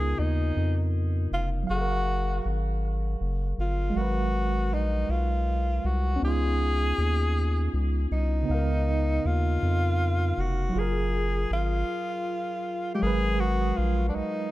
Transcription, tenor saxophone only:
0.00 0.20 G#4 loud
0.19 0.93 D#4 medium
1.33 1.49 F4 medium
1.70 2.50 F#4 loud
3.60 3.98 F4 medium
3.97 4.75 F#4 loud
4.73 5.12 D#4 medium
5.11 5.88 F4 medium
5.86 6.22 F#4 medium
6.24 7.80 G#4 loud
8.12 9.28 D#4 medium
9.26 10.42 F4 loud
10.40 10.80 F#4 medium
10.79 11.52 G#4 medium
11.53 12.91 F4 medium
12.94 13.04 G4 medium
13.02 13.41 G#4 loud
13.40 13.78 F#4 loud
13.77 14.07 F4 medium
14.08 14.17 D4 medium
14.15 14.51 D#4 medium

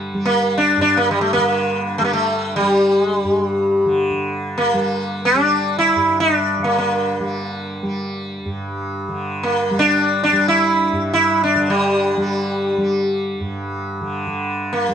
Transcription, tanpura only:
0.00 0.77 G2 medium
0.00 1.37 D3 medium
0.00 0.14 G3 medium
0.14 2.00 G3 medium
0.77 3.24 G2 medium
1.37 3.85 D3 medium
2.00 2.61 G3 medium
2.61 4.74 G3 medium
3.24 5.96 G2 medium
3.85 4.11 D3 medium
4.11 6.58 D3 soft
4.74 5.34 G3 medium
5.34 7.20 G3 medium
5.96 8.45 G2 medium
6.58 9.08 D3 medium
7.20 7.83 G3 medium
7.83 9.71 G3 medium
8.45 10.92 G2 medium
9.08 11.55 D3 medium
9.71 10.33 G3 medium
10.33 12.17 G3 medium
10.93 13.40 G2 medium
11.55 14.01 D3 medium
12.17 12.78 G3 medium
12.78 14.88 G3 medium
13.40 14.94 G2 medium
14.01 14.27 D3 medium
14.27 14.94 D3 medium
14.88 14.94 G3 medium

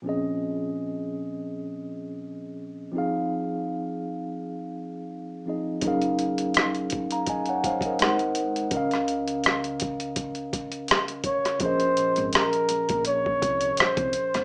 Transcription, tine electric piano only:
0.02 2.88 A#2 medium
0.02 2.89 F3 medium
0.02 2.89 C4 medium
0.02 2.90 C#4 medium
0.07 2.91 G#4 medium
0.07 2.92 D#5 medium
2.92 5.41 F3 medium
2.92 5.42 C4 medium
2.92 5.43 D#4 medium
2.97 5.44 G#4 medium
2.97 5.45 F5 medium
5.46 5.82 F3 soft
5.46 5.83 C4 soft
5.46 5.83 D#4 soft
5.46 5.84 G#4 soft
5.46 5.84 D#5 soft
5.81 7.94 F#3 medium
5.81 7.95 C#4 medium
5.81 7.96 D#4 medium
5.85 7.97 G#4 medium
5.85 6.91 A#4 medium
5.85 6.91 F5 medium
7.12 7.27 F5 soft
7.12 7.27 A#5 soft
7.29 7.47 D#5 soft
7.29 7.47 G#5 medium
7.49 7.64 C#5 soft
7.49 7.63 F#5 medium
7.66 7.83 C5 medium
7.66 7.83 F5 medium
7.85 8.01 A#4 soft
7.85 8.18 D#5 soft
8.00 8.72 G#3 medium
8.00 8.72 D#4 medium
8.00 8.72 A#4 medium
8.00 8.73 C5 medium
8.00 8.73 F#5 medium
8.70 11.56 C#3 medium
8.70 11.57 C#4 medium
8.70 11.58 A#4 medium
8.75 11.58 D#5 medium
8.75 11.59 F5 medium
11.59 14.44 A#2 medium
11.59 14.44 F3 medium
11.59 14.44 C#4 medium
11.59 14.44 G#4 soft
11.65 14.44 A#4 soft
11.65 14.44 D#5 medium

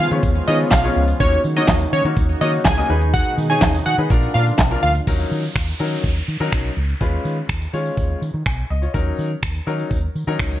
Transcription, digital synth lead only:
0.48 0.58 D#5 medium
0.72 1.06 F5 medium
1.20 1.41 C#5 loud
1.57 1.77 D#5 medium
1.93 2.03 C#5 medium
2.41 2.51 D#5 medium
2.65 2.99 G#5 loud
3.14 3.34 F#5 loud
3.50 3.70 G#5 medium
3.86 3.96 F#5 medium
4.34 4.45 F5 medium
4.83 4.93 F5 medium

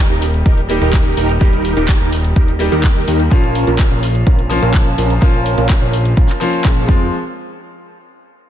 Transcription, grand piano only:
0.00 0.66 G3 medium
0.00 0.67 A#3 medium
0.00 0.67 D#4 medium
0.00 0.67 G4 loud
0.68 1.38 G3 medium
0.68 1.38 A#3 medium
0.68 1.38 D#4 medium
0.68 1.39 G4 loud
1.40 2.57 G3 medium
1.40 2.57 A#3 medium
1.40 2.57 D#4 medium
1.40 2.58 G4 loud
2.59 3.28 G3 loud
2.59 3.28 A#3 medium
2.59 3.29 D#4 medium
2.59 3.29 G4 loud
3.30 4.47 F3 medium
3.30 4.48 A#3 medium
3.30 4.48 C#4 medium
3.30 4.48 F4 loud
4.49 5.19 F3 loud
4.49 5.19 A#3 medium
4.49 5.19 C#4 medium
4.49 5.20 F4 loud
5.21 6.38 F3 medium
5.21 6.38 A#3 medium
5.21 6.38 C#4 medium
5.21 6.39 F4 loud
6.40 6.85 F3 loud
6.40 6.88 A#3 medium
6.40 6.89 C#4 medium
6.40 6.89 F4 loud
6.87 7.05 F3 medium
6.87 7.06 G#3 medium
6.87 7.07 C4 medium
6.87 7.07 F4 medium

